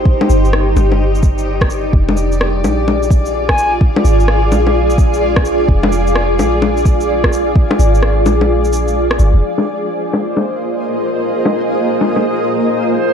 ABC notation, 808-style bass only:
X:1
M:4/4
L:1/16
Q:"Swing 16ths" 1/4=128
K:Fdor
V:1 name="808-style bass" clef=bass
z2 G,,,4 G,,,8- G,,,2 | F,,,6 B,,,8- B,,,2 | z2 A,,,4 B,,,8- B,,,2 | F,,,6 B,,,8- B,,,2 |
z2 A,,,4 B,,,8 G,,, F,,, | z16 | z16 |]